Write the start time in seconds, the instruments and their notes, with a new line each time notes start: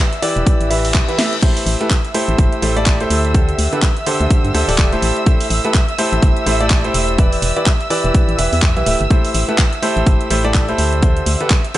Already playing: violin section E5 E6
0.13 closed hi-hat
0.22 grand piano E3 E4 G4 B4 D5, open hi-hat
0.36 fm bass E1, closed hi-hat
0.46 kick, closed hi-hat, reverse cymbal
0.60 fm bass A1, closed hi-hat
0.70 grand piano E3 E4 G4 B4 E5, open hi-hat
0.85 open hi-hat
0.94 fm bass B1, kick, clap, closed hi-hat
1.08 grand piano E3 E4 G4 B4 E5, closed hi-hat
1.18 grand piano A3 E4 G4 B4 E5, snare, open hi-hat
1.33 closed hi-hat
1.42 grand piano A3 E4 G4 A4 C5, violin section E5 E6, kick, closed hi-hat, crash
1.57 open hi-hat
1.66 fm bass A1, open hi-hat
1.81 grand piano A3 E4 G4 A4 B4, closed hi-hat
1.90 kick, clap, closed hi-hat
2.05 closed hi-hat
2.14 grand piano A3 E4 G4 A4 C5, open hi-hat
2.28 fm bass A1, closed hi-hat
2.38 fm bass G1, kick, closed hi-hat
2.53 closed hi-hat
2.62 fm bass A1, grand piano A3 E4 G4 A4 C5, open hi-hat
2.76 grand piano A3 E4 G4 A4 D5, closed hi-hat
2.86 kick, clap, closed hi-hat
3.00 grand piano A3 E4 G4 A4 C5, closed hi-hat
3.10 fm bass D2, open hi-hat
3.25 closed hi-hat
3.34 grand piano D3 G4 A4, kick, closed hi-hat
3.49 closed hi-hat
3.58 fm bass D2, open hi-hat
3.73 grand piano D3 D4 G4 A4 B4, closed hi-hat
3.82 kick, clap, closed hi-hat
3.97 closed hi-hat
4.06 grand piano D3 D4 G4 A4 C5, open hi-hat
4.20 fm bass D2, closed hi-hat
4.30 kick, closed hi-hat
4.44 fm bass G2, closed hi-hat
4.54 fm bass D2, grand piano D3 D4 G4 A4 C5, open hi-hat
4.68 fm bass D1, grand piano D3 D4 G4 A4 D5, open hi-hat
4.78 kick, clap, closed hi-hat
4.92 grand piano A3 E4 G4 A4 C5, closed hi-hat
5.02 fm bass A1, open hi-hat
5.16 closed hi-hat
5.26 grand piano A3 E4 G4 A4 C5, kick, closed hi-hat
5.40 open hi-hat
5.50 fm bass A1, open hi-hat
5.64 grand piano A3 E4 G4 A4 B4, closed hi-hat
5.74 kick, clap, closed hi-hat
5.89 closed hi-hat
5.99 grand piano A3 E4 G4 A4 C5, open hi-hat
6.13 fm bass A1, closed hi-hat
6.22 fm bass G1, kick, closed hi-hat
6.37 closed hi-hat
6.46 fm bass A1, grand piano A3 E4 G4 A4 C5, open hi-hat
6.61 grand piano A3 E4 G4 A4 D5, closed hi-hat
6.70 kick, clap, closed hi-hat
6.84 grand piano A3 E4 G4 A4 C5, closed hi-hat
6.94 fm bass E1, open hi-hat
7.08 closed hi-hat
7.18 grand piano E3 E4 G4 B4 D5, kick, closed hi-hat
7.32 open hi-hat
7.42 fm bass E1, open hi-hat
7.56 grand piano E3 E4 G4 B4 D5, closed hi-hat
7.66 kick, clap, closed hi-hat
7.81 closed hi-hat
7.90 grand piano E3 E4 G4 B4 D5, open hi-hat
8.04 fm bass E1, closed hi-hat
8.15 kick, closed hi-hat
8.28 fm bass A1, closed hi-hat
8.38 fm bass E1, grand piano E3 E4 G4 B4 E5, open hi-hat
8.53 fm bass E2, open hi-hat
8.62 kick, clap, closed hi-hat
8.76 fm bass B1, grand piano E3 E4 G4 B4 E5, closed hi-hat
8.86 fm bass D1, grand piano A3 E4 G4 B4 E5, open hi-hat
9.01 fm bass G1, closed hi-hat
9.11 grand piano A3 E4 G4 A4 C5, kick, closed hi-hat
9.25 open hi-hat
9.35 fm bass A1, open hi-hat
9.48 grand piano A3 E4 G4 A4 B4, closed hi-hat
9.58 kick, clap, closed hi-hat
9.73 closed hi-hat
9.82 grand piano A3 E4 G4 A4 C5, open hi-hat
9.97 fm bass A1, closed hi-hat
10.07 fm bass G1, kick, closed hi-hat
10.21 closed hi-hat
10.30 fm bass A1, grand piano A3 E4 G4 A4 C5, open hi-hat
10.44 grand piano A3 E4 G4 A4 D5, closed hi-hat
10.54 kick, clap, closed hi-hat
10.69 grand piano A3 E4 G4 A4 C5, closed hi-hat
10.78 fm bass D2, open hi-hat
10.93 closed hi-hat
11.03 grand piano D3 D4 G4 A4 C5, kick, closed hi-hat
11.17 closed hi-hat
11.26 fm bass D2, open hi-hat
11.41 grand piano D3 D4 G4 A4 B4, closed hi-hat
11.50 kick, clap, closed hi-hat
11.65 closed hi-hat
11.74 grand piano D3 D4 G4 A4 C5, open hi-hat